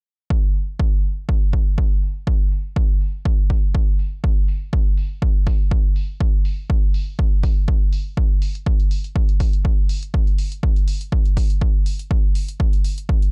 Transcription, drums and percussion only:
0.30 kick
0.55 open hi-hat
0.80 kick
1.04 open hi-hat
1.29 kick
1.53 kick
1.78 kick
2.02 open hi-hat
2.27 kick
2.52 open hi-hat
2.76 kick
3.01 open hi-hat
3.25 kick
3.50 kick, open hi-hat
3.75 kick
3.99 open hi-hat
4.24 kick
4.48 open hi-hat
4.73 kick
4.97 open hi-hat
5.22 kick
5.47 kick, open hi-hat
5.71 kick
5.96 open hi-hat
6.20 kick
6.45 open hi-hat
6.70 kick
6.94 open hi-hat
7.19 kick
7.43 kick, open hi-hat
7.68 kick
7.93 open hi-hat
8.17 kick
8.42 open hi-hat
8.55 closed hi-hat
8.66 kick
8.80 closed hi-hat
8.91 open hi-hat
9.04 closed hi-hat
9.16 kick
9.29 closed hi-hat
9.40 kick, open hi-hat
9.53 closed hi-hat
9.65 kick
9.89 open hi-hat
10.03 closed hi-hat
10.14 kick
10.27 closed hi-hat
10.38 open hi-hat
10.52 closed hi-hat
10.63 kick
10.76 closed hi-hat
10.88 open hi-hat
11.01 closed hi-hat
11.12 kick
11.26 closed hi-hat
11.37 kick, open hi-hat
11.50 closed hi-hat
11.61 kick
11.86 open hi-hat
11.99 closed hi-hat
12.11 kick
12.35 open hi-hat
12.48 closed hi-hat
12.60 kick
12.73 closed hi-hat
12.84 open hi-hat
12.98 closed hi-hat
13.09 kick
13.22 closed hi-hat

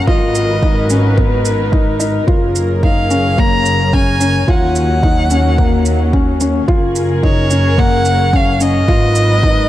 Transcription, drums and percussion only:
0.07 kick
0.35 shaker
0.63 kick
0.90 shaker
1.18 kick
1.45 shaker
1.73 kick
2.00 shaker
2.28 kick
2.56 shaker
2.83 kick
3.11 shaker
3.38 kick
3.66 shaker
3.93 kick
4.21 shaker
4.48 kick
4.76 shaker
5.03 kick
5.30 shaker
5.58 kick
5.86 shaker
6.13 kick
6.41 shaker
6.68 kick
6.96 shaker
7.23 kick
7.51 shaker
7.78 kick
8.05 shaker
8.33 kick
8.61 shaker
8.88 kick
9.15 shaker
9.43 kick

